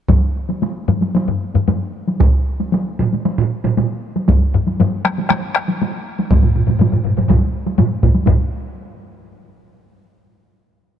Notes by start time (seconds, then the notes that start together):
0.09 taiko, taiko low-mid, taiko high
0.49 taiko high
0.62 taiko high
0.88 taiko low-mid, taiko high
1.01 taiko high
1.15 taiko high
1.28 taiko low-mid
1.54 taiko low-mid, taiko high
1.68 taiko low-mid, taiko high
2.08 taiko high
2.20 taiko, taiko mid, taiko high
2.60 taiko high
2.72 taiko high
2.99 taiko mid, taiko high
3.13 taiko high
3.25 taiko high
3.38 taiko mid
3.64 taiko mid, taiko high
3.77 taiko mid, taiko high
4.16 taiko high
4.28 taiko, taiko low-mid, taiko high
4.54 taiko low-mid
4.67 taiko high
4.80 taiko low-mid, taiko high
5.05 taiko rim, taiko high
5.18 taiko high
5.30 taiko rim, taiko high
5.55 taiko rim
5.69 taiko high
5.82 taiko high
6.19 taiko high
6.30 taiko, taiko low-mid, taiko mid, taiko high
6.42 taiko low-mid, taiko mid
6.55 taiko low-mid, taiko mid
6.67 taiko low-mid, taiko mid, taiko high
6.79 taiko low-mid, taiko mid, taiko high
6.92 taiko low-mid, taiko mid
7.04 taiko low-mid, taiko mid
7.17 taiko low-mid, taiko mid, taiko high
7.29 taiko, taiko low-mid, taiko mid, taiko high
7.66 taiko high
7.78 taiko low-mid, taiko mid, taiko high
8.03 taiko, taiko low-mid, taiko mid
8.15 taiko high
8.26 taiko, taiko low-mid, taiko mid, taiko high